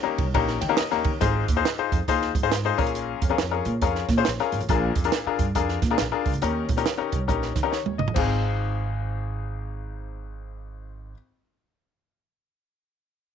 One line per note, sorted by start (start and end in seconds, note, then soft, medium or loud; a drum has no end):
0.00 0.14 D#3 medium
0.00 0.23 A#3 medium
0.00 0.23 C#4 medium
0.00 0.23 D#4 medium
0.00 0.23 G4 medium
0.00 0.23 A#4 medium
0.05 muted upright bass stroke soft
0.18 0.31 C2 medium
0.18 kick medium
0.18 ride medium
0.34 0.55 A#1 loud
0.34 0.57 A#3 medium
0.34 0.57 C#4 medium
0.34 0.57 D#4 medium
0.34 0.57 G4 medium
0.34 0.57 A#4 loud
0.34 kick medium
0.34 ride medium
0.48 snare soft
0.61 0.75 D#3 loud
0.61 0.77 G5 medium
0.61 snare soft
0.61 ride medium
0.69 0.79 A#3 medium
0.69 0.79 C#4 medium
0.69 0.79 D#4 medium
0.69 0.79 G4 medium
0.69 0.79 A#4 loud
0.77 1.18 D#5 medium
0.77 muted upright bass stroke soft
0.77 snare loud
0.77 ride medium
0.91 1.02 D#2 medium
0.91 1.10 A#3 medium
0.91 1.10 C#4 medium
0.91 1.10 D#4 medium
0.91 1.10 G4 medium
0.91 1.10 A#4 loud
0.91 snare soft
1.04 1.18 D#3 medium
1.04 kick loud
1.04 ride medium
1.21 1.42 G#1 loud
1.21 1.87 G#2 medium
1.21 1.43 D#4 medium
1.21 1.43 F4 medium
1.21 1.43 G#4 medium
1.21 1.43 C5 loud
1.21 kick loud
1.21 closed hi-hat medium
1.48 1.61 D#2 medium
1.48 kick medium
1.48 closed hi-hat medium
1.56 1.66 D#4 medium
1.56 1.66 F4 medium
1.56 1.66 G#4 medium
1.56 1.66 C5 medium
1.65 snare loud
1.65 closed hi-hat medium
1.79 1.97 D#4 medium
1.79 1.97 F4 medium
1.79 1.97 G#4 medium
1.79 1.97 C5 medium
1.79 muted upright bass stroke soft
1.92 2.05 F2 medium
1.92 kick medium
1.92 closed hi-hat medium
2.08 2.29 D#2 medium
2.08 2.30 D#4 medium
2.08 2.30 F4 medium
2.08 2.30 G#4 medium
2.08 2.31 C5 loud
2.08 kick medium
2.08 closed hi-hat medium
2.22 snare soft
2.35 2.69 G#2 loud
2.35 kick medium
2.35 closed hi-hat medium
2.43 2.53 D#4 medium
2.43 2.53 F4 medium
2.43 2.53 G#4 medium
2.43 2.53 C5 loud
2.52 snare loud
2.52 closed hi-hat loud
2.65 2.78 D#4 medium
2.65 2.77 F4 medium
2.65 2.77 G#4 medium
2.65 2.79 C5 loud
2.78 3.12 A#1 medium
2.78 3.34 A#2 medium
2.78 3.21 C#4 medium
2.78 3.22 F4 medium
2.78 3.22 G#4 medium
2.78 3.22 A#4 loud
2.78 kick medium
2.78 open hi-hat medium
2.87 closed hi-hat medium
2.95 closed hi-hat medium
3.22 3.35 F2 medium
3.22 kick loud
3.22 closed hi-hat medium
3.30 3.39 C#4 medium
3.30 3.39 F4 medium
3.30 3.40 G#4 medium
3.30 3.40 A#4 medium
3.38 3.59 F2 medium
3.38 snare loud
3.38 closed hi-hat medium
3.51 3.70 C#4 medium
3.51 3.70 F4 medium
3.51 3.70 G#4 medium
3.51 3.70 A#4 medium
3.65 3.78 A#2 loud
3.65 closed hi-hat medium
3.82 4.02 F2 medium
3.82 4.04 C#4 medium
3.82 4.04 F4 medium
3.82 4.04 G#4 medium
3.82 4.04 A#4 medium
3.82 kick medium
3.82 closed hi-hat medium
3.95 snare soft
4.09 4.22 A#2 loud
4.09 kick medium
4.09 snare soft
4.09 closed hi-hat medium
4.17 4.27 C#4 medium
4.17 4.27 F4 medium
4.17 4.27 G#4 medium
4.17 4.27 C5 loud
4.25 4.36 A#1 medium
4.25 snare loud
4.25 closed hi-hat loud
4.38 4.58 C#4 medium
4.38 4.58 F4 medium
4.38 4.58 G#4 medium
4.38 4.58 A#4 loud
4.38 snare soft
4.52 4.59 G#1 medium
4.52 closed hi-hat medium
4.60 4.67 A1 medium
4.60 closed hi-hat medium
4.69 4.90 A#1 loud
4.69 5.35 A#2 medium
4.69 4.91 D4 medium
4.69 4.91 F4 medium
4.69 4.91 G#4 medium
4.69 4.91 A#4 loud
4.69 kick loud
4.69 closed hi-hat medium
4.96 5.09 F2 medium
4.96 kick medium
4.96 closed hi-hat medium
5.04 5.14 D4 medium
5.04 5.14 F4 medium
5.04 5.14 G#4 medium
5.04 5.14 A#4 loud
5.04 closed hi-hat medium
5.12 snare loud
5.12 closed hi-hat medium
5.26 5.45 D4 medium
5.26 5.45 F4 medium
5.26 5.45 G#4 medium
5.26 5.45 A#4 loud
5.26 muted upright bass stroke soft
5.39 5.52 G2 medium
5.39 kick medium
5.39 closed hi-hat medium
5.55 5.76 F2 medium
5.55 5.77 D4 medium
5.55 5.77 F4 medium
5.55 5.77 G#4 medium
5.55 5.77 A#4 medium
5.55 kick medium
5.55 closed hi-hat medium
5.69 snare soft
5.82 5.95 A#2 loud
5.82 kick medium
5.82 snare soft
5.82 closed hi-hat medium
5.91 6.00 D4 medium
5.91 6.00 F4 medium
5.91 6.00 G#4 medium
5.91 6.00 A#4 loud
5.98 6.09 A#1 medium
5.98 snare loud
5.98 closed hi-hat loud
6.12 6.31 D4 medium
6.12 6.31 F4 medium
6.12 6.31 G#4 medium
6.12 6.31 A#4 medium
6.25 6.32 C#2 medium
6.25 kick medium
6.25 open hi-hat medium
6.33 6.40 D2 medium
6.33 closed hi-hat medium
6.42 6.63 D#2 loud
6.42 7.08 D#3 medium
6.42 6.64 C#4 medium
6.42 6.64 D#4 medium
6.42 6.64 G4 medium
6.42 6.64 A#4 medium
6.42 closed hi-hat medium
6.69 6.82 A#1 medium
6.69 kick loud
6.69 closed hi-hat medium
6.77 6.87 C#4 medium
6.77 6.87 D#4 medium
6.77 6.87 G4 medium
6.77 6.87 A#4 loud
6.77 closed hi-hat medium
6.86 snare loud
6.86 closed hi-hat medium
6.98 7.17 C#4 medium
6.98 7.17 D#4 medium
6.98 7.17 G4 medium
6.98 7.17 A#4 medium
6.98 muted upright bass stroke soft
7.12 7.26 C2 medium
7.12 kick medium
7.12 closed hi-hat medium
7.28 7.50 A#1 medium
7.28 7.50 C#4 medium
7.28 7.50 D#4 medium
7.28 7.50 G4 medium
7.28 7.50 A#4 medium
7.28 kick medium
7.28 closed hi-hat medium
7.42 snare soft
7.56 7.79 D#3 loud
7.56 kick medium
7.56 snare soft
7.56 closed hi-hat medium
7.63 7.73 C#4 medium
7.63 7.73 D#4 medium
7.63 7.73 G4 medium
7.63 7.73 A#4 loud
7.72 7.97 C#5 medium
7.72 snare medium
7.86 7.96 D#2 medium
7.86 high tom medium
7.98 8.12 G1 medium
7.98 8.40 D#5 medium
7.98 mid tom medium
8.08 floor tom medium
8.14 11.12 G#1 medium
8.14 11.12 G#1 loud
8.14 11.11 C4 medium
8.14 11.12 D#4 medium
8.14 11.13 F4 medium
8.14 11.14 G#4 medium
8.14 kick loud
8.14 crash medium